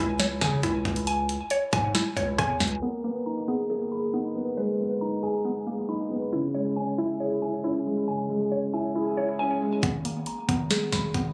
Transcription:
0.00 0.40 C#2 loud
0.00 0.62 E4 loud
0.00 0.18 C#5 medium
0.00 0.40 G#5 medium
0.20 1.50 C#5 medium
0.20 snare loud
0.20 closed hi-hat medium
0.41 0.62 C#3 loud
0.41 1.06 G#5 medium
0.41 kick medium
0.41 snare loud
0.41 closed hi-hat medium
0.63 0.84 C#2 loud
0.63 1.94 E4 medium
0.63 kick medium
0.63 closed hi-hat medium
0.85 1.38 C#2 loud
0.85 kick medium
0.85 closed hi-hat soft
0.96 closed hi-hat medium
1.07 1.72 G#5 medium
1.07 closed hi-hat medium
1.29 closed hi-hat medium
1.50 2.15 C#5 medium
1.50 closed hi-hat medium
1.73 1.94 G#2 loud
1.73 2.37 G#5 medium
1.73 kick medium
1.73 closed hi-hat medium
1.95 2.82 E4 medium
1.95 snare loud
1.95 closed hi-hat medium
2.17 2.38 C#2 loud
2.17 2.82 C#5 medium
2.17 kick medium
2.17 closed hi-hat medium
2.38 2.60 E2 loud
2.38 2.82 G#5 loud
2.38 kick medium
2.38 cross-stick loud
2.38 closed hi-hat medium
2.60 2.81 C#2 loud
2.60 kick medium
2.60 snare medium
2.60 closed hi-hat medium
2.60 open hi-hat soft
2.68 closed hi-hat medium
2.75 closed hi-hat medium
2.82 3.69 A#3 medium
2.82 3.47 B3 medium
3.04 4.36 A#3 medium
3.04 4.14 B3 medium
3.26 4.12 D#4 medium
3.26 4.57 A#5 medium
3.48 4.12 B3 loud
3.48 3.91 G#4 loud
3.70 4.80 A#3 medium
3.70 5.01 G#4 medium
3.92 5.01 G#4 medium
3.92 5.23 B5 medium
4.13 5.44 B3 medium
4.13 5.00 D#4 medium
4.35 4.79 B3 medium
4.57 5.67 G#3 medium
4.57 5.89 B4 medium
4.80 5.89 B3 medium
5.01 5.87 D#4 medium
5.01 6.33 A#5 medium
5.23 5.66 G#4 loud
5.23 6.33 G#5 medium
5.45 6.33 B3 medium
5.67 6.33 A#3 medium
5.67 6.33 G#4 medium
5.89 6.33 D#4 medium
5.89 6.33 B5 medium
6.10 6.32 B3 medium
6.33 7.43 C#3 medium
6.33 6.97 E4 medium
6.54 7.64 G#3 medium
6.54 7.19 C#5 medium
6.76 7.62 C#4 medium
6.76 7.41 G#5 medium
6.98 7.41 E4 medium
6.98 7.63 E4 medium
7.20 8.30 G#4 medium
7.20 8.50 C#5 medium
7.42 8.52 E4 medium
7.42 8.07 G#5 medium
7.64 8.50 C#4 medium
7.64 8.94 E4 medium
7.87 8.28 G#3 medium
8.08 9.17 C#3 medium
8.08 8.72 G#5 medium
8.29 9.39 G#3 medium
8.52 9.38 C#4 medium
8.52 9.16 C#5 medium
8.73 9.16 E4 loud
8.73 9.38 G#5 medium
8.95 9.83 E4 medium
8.95 9.83 G#4 medium
9.17 9.83 E4 medium
9.17 9.83 C#5 medium
9.39 9.83 C#4 medium
9.39 9.83 G#5 loud
9.62 9.83 G#3 medium
9.83 10.25 G#1 loud
9.83 10.48 B3 medium
9.83 kick loud
9.83 closed hi-hat medium
10.05 11.33 A#3 medium
10.05 closed hi-hat medium
10.26 11.33 A#5 medium
10.26 closed hi-hat medium
10.49 10.91 G#1 loud
10.49 11.13 B3 loud
10.49 kick medium
10.49 closed hi-hat medium
10.71 11.33 G#4 medium
10.71 snare loud
10.71 closed hi-hat medium
10.92 11.14 G#1 loud
10.92 11.33 B5 medium
10.92 kick medium
10.92 snare loud
10.92 closed hi-hat medium
11.14 11.33 G#1 loud
11.14 11.33 B3 medium
11.14 kick medium
11.14 closed hi-hat medium

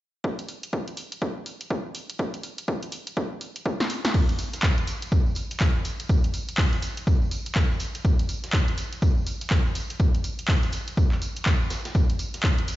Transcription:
0.24 kick loud
0.39 closed hi-hat medium
0.49 open hi-hat loud
0.63 closed hi-hat medium
0.73 kick loud
0.88 closed hi-hat soft
0.97 open hi-hat loud
1.12 closed hi-hat medium
1.22 kick loud
1.46 open hi-hat loud
1.61 closed hi-hat medium
1.70 kick loud
1.95 open hi-hat loud
2.10 closed hi-hat medium
2.19 kick loud
2.34 closed hi-hat medium
2.43 open hi-hat loud
2.58 closed hi-hat medium
2.68 kick loud
2.83 closed hi-hat soft
2.92 open hi-hat loud
3.07 closed hi-hat medium
3.17 kick loud
3.41 open hi-hat loud
3.56 closed hi-hat medium
3.66 kick loud
3.80 snare medium
3.90 open hi-hat loud
4.05 snare loud
4.05 closed hi-hat medium
4.14 kick loud
4.14 crash medium
4.14 tambourine medium
4.14 tambourine soft
4.29 closed hi-hat medium
4.29 tambourine soft
4.39 open hi-hat loud
4.39 tambourine medium
4.53 snare soft
4.53 closed hi-hat medium
4.53 tambourine soft
4.62 kick loud
4.62 snare loud
4.62 clap loud
4.62 tambourine medium
4.78 closed hi-hat medium
4.78 tambourine soft
4.87 open hi-hat loud
4.87 tambourine medium
5.02 closed hi-hat medium
5.02 tambourine soft
5.12 kick loud
5.12 tambourine medium
5.26 tambourine soft
5.35 open hi-hat loud
5.35 tambourine medium
5.51 closed hi-hat soft
5.51 closed hi-hat medium
5.51 tambourine soft
5.60 kick loud
5.60 snare loud
5.60 clap loud
5.60 tambourine medium
5.75 tambourine soft
5.85 open hi-hat loud
5.85 tambourine medium
6.00 closed hi-hat medium
6.00 tambourine soft
6.09 kick loud
6.09 tambourine medium
6.24 closed hi-hat medium
6.24 tambourine soft
6.34 open hi-hat loud
6.34 tambourine medium
6.49 closed hi-hat medium
6.49 tambourine soft
6.58 kick loud
6.58 snare loud
6.58 clap loud
6.58 open hi-hat medium
6.58 tambourine soft
6.73 snare soft
6.73 closed hi-hat medium
6.73 tambourine soft
6.82 open hi-hat loud
6.82 tambourine medium
6.82 tambourine loud
6.97 closed hi-hat medium
6.97 tambourine soft
7.07 kick loud
7.07 tambourine medium
7.22 tambourine soft
7.31 open hi-hat loud
7.31 tambourine medium
7.46 closed hi-hat medium
7.46 tambourine soft
7.55 kick loud
7.55 snare loud
7.55 clap loud
7.55 tambourine medium
7.71 tambourine soft
7.80 open hi-hat loud
7.80 tambourine loud
7.80 tambourine medium
7.95 closed hi-hat medium
7.95 tambourine soft
8.05 kick loud
8.05 tambourine medium
8.19 closed hi-hat medium
8.19 tambourine soft
8.29 open hi-hat loud
8.29 tambourine loud
8.29 tambourine medium
8.44 snare soft
8.44 closed hi-hat medium
8.44 tambourine soft
8.53 kick loud
8.53 snare loud
8.53 clap loud
8.53 tambourine medium
8.68 closed hi-hat soft
8.68 tambourine soft
8.78 open hi-hat loud
8.78 tambourine medium
8.78 tambourine loud
8.92 closed hi-hat medium
8.92 tambourine soft
9.02 kick loud
9.02 tambourine medium
9.17 tambourine soft
9.26 open hi-hat loud
9.26 tambourine loud
9.26 tambourine medium
9.41 closed hi-hat soft
9.41 closed hi-hat medium
9.41 tambourine soft
9.50 kick loud
9.50 snare loud
9.50 clap loud
9.50 tambourine medium
9.66 tambourine soft
9.75 open hi-hat loud
9.75 tambourine medium
9.90 closed hi-hat medium
9.90 tambourine soft
10.00 kick loud
10.00 tambourine medium
10.00 tambourine soft
10.15 closed hi-hat soft
10.15 tambourine soft
10.24 open hi-hat loud
10.24 tambourine medium
10.39 closed hi-hat medium
10.39 tambourine soft
10.48 kick loud
10.48 snare loud
10.48 clap loud
10.48 open hi-hat medium
10.48 tambourine soft
10.63 snare soft
10.63 closed hi-hat soft
10.63 tambourine soft
10.72 open hi-hat loud
10.72 tambourine medium
10.88 closed hi-hat medium
10.88 tambourine soft
10.97 kick loud
10.97 tambourine medium
11.12 clap soft
11.12 tambourine soft
11.22 open hi-hat loud
11.22 tambourine medium
11.36 closed hi-hat medium
11.36 tambourine soft
11.46 kick loud
11.46 snare loud
11.46 clap loud
11.46 tambourine medium
11.46 tambourine soft
11.61 tambourine soft
11.70 snare loud
11.70 open hi-hat loud
11.70 tambourine medium
11.85 snare loud
11.85 closed hi-hat medium
11.85 tambourine soft
11.85 tambourine medium
11.95 kick loud
11.95 tambourine medium
12.10 closed hi-hat medium
12.10 tambourine soft
12.19 open hi-hat loud
12.19 tambourine medium
12.19 tambourine loud
12.34 snare soft
12.34 closed hi-hat medium
12.34 tambourine soft
12.43 kick loud
12.43 snare loud
12.43 clap loud
12.43 tambourine medium
12.43 tambourine soft
12.58 closed hi-hat soft
12.58 tambourine soft
12.68 open hi-hat loud
12.68 tambourine medium

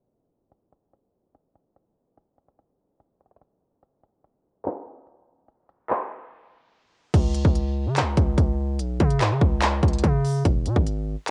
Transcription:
0.52 closed hi-hat medium
0.73 closed hi-hat medium
0.93 closed hi-hat medium
1.35 closed hi-hat medium
1.55 closed hi-hat medium
1.76 closed hi-hat medium
2.17 closed hi-hat medium
2.38 closed hi-hat medium
2.48 closed hi-hat medium
2.59 closed hi-hat medium
3.00 closed hi-hat medium
3.21 closed hi-hat soft
3.26 closed hi-hat medium
3.31 closed hi-hat medium
3.36 closed hi-hat medium
3.41 closed hi-hat medium
3.83 closed hi-hat medium
4.04 closed hi-hat medium
4.24 closed hi-hat medium
4.66 clap loud
4.86 closed hi-hat medium
5.07 closed hi-hat medium
5.48 closed hi-hat medium
5.69 closed hi-hat medium
5.90 clap loud
5.90 closed hi-hat medium
7.14 7.44 C#2 loud
7.14 kick loud
7.14 closed hi-hat medium
7.14 crash medium
7.35 closed hi-hat medium
7.45 7.88 C#2 loud
7.45 kick medium
7.55 closed hi-hat medium
7.86 8.03 C#3 medium
7.97 clap loud
7.97 closed hi-hat medium
8.02 8.17 C#2 loud
8.17 8.37 C#2 loud
8.17 kick medium
8.17 closed hi-hat medium
8.38 8.81 C#2 loud
8.38 kick medium
8.38 closed hi-hat medium
8.79 8.99 B1 loud
8.79 closed hi-hat medium
9.00 9.22 C#3 loud
9.00 kick medium
9.00 closed hi-hat medium
9.10 closed hi-hat medium
9.21 9.33 G#2 loud
9.21 clap loud
9.21 closed hi-hat medium
9.31 9.41 C#3 medium
9.41 9.81 C#2 loud
9.41 kick loud
9.62 clap loud
9.62 closed hi-hat medium
9.83 10.03 C#2 loud
9.83 kick medium
9.83 closed hi-hat soft
9.88 closed hi-hat medium
9.93 closed hi-hat medium
9.98 closed hi-hat medium
10.03 10.43 C#3 loud
10.03 kick medium
10.03 closed hi-hat medium
10.24 open hi-hat medium
10.45 10.67 E1 loud
10.45 kick loud
10.45 closed hi-hat medium
10.66 10.76 B2 medium
10.66 closed hi-hat medium
10.76 11.16 G#1 loud
10.76 kick loud
10.87 closed hi-hat medium

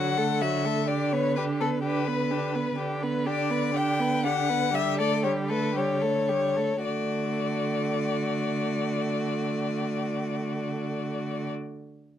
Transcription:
0.00 2.75 D3 soft
0.00 0.20 F#3 soft
0.00 0.20 F#4 soft
0.00 0.43 F#5 medium
0.18 0.43 A3 soft
0.18 0.43 A4 soft
0.41 0.66 F#3 soft
0.41 0.67 F#4 soft
0.41 0.89 E5 medium
0.65 0.88 A3 soft
0.65 0.89 A4 soft
0.88 1.14 D4 soft
0.88 1.15 G4 soft
0.88 1.14 D5 medium
1.12 1.38 B3 soft
1.12 1.39 B4 soft
1.12 1.35 C#5 medium
1.36 1.62 D4 soft
1.36 1.62 G4 soft
1.36 1.44 B4 medium
1.60 1.83 B3 soft
1.60 1.69 A4 medium
1.60 1.83 B4 soft
1.83 2.09 D4 soft
1.83 2.09 G4 soft
1.83 2.78 B4 medium
2.07 2.33 B3 soft
2.07 2.32 B4 soft
2.31 2.57 D4 soft
2.31 2.56 G4 soft
2.55 2.79 B3 soft
2.55 2.78 B4 soft
2.79 6.58 D3 soft
2.79 3.05 D4 soft
2.79 3.04 G4 soft
3.03 3.28 B3 soft
3.03 3.28 B4 soft
3.26 3.52 D4 soft
3.26 3.52 G4 soft
3.26 3.78 D5 medium
3.50 3.74 B3 soft
3.50 3.75 B4 soft
3.75 4.01 D4 soft
3.75 4.02 G4 soft
3.75 4.25 G5 medium
3.99 4.26 B3 soft
3.99 4.26 B4 soft
4.24 4.51 D4 soft
4.24 4.50 G4 soft
4.24 4.76 F#5 medium
4.49 4.74 B3 soft
4.49 4.72 B4 soft
4.73 5.01 G3 soft
4.73 5.00 G4 soft
4.73 4.99 E5 medium
4.99 5.26 A3 soft
4.99 5.25 A4 soft
4.99 5.23 D5 medium
5.23 5.52 G3 soft
5.23 5.51 G4 soft
5.23 5.31 C#5 medium
5.49 5.76 A3 soft
5.49 5.75 A4 soft
5.49 5.78 B4 medium
5.76 6.05 G3 soft
5.76 6.03 G4 soft
5.76 6.84 C#5 soft
6.02 6.31 A3 soft
6.02 6.31 A4 soft
6.29 6.59 G3 soft
6.29 6.58 G4 soft
6.56 6.84 A3 soft
6.56 6.84 A4 soft
6.84 11.50 D3 soft
6.84 11.50 A3 soft
6.84 11.49 F#4 soft
6.84 11.49 D5 soft

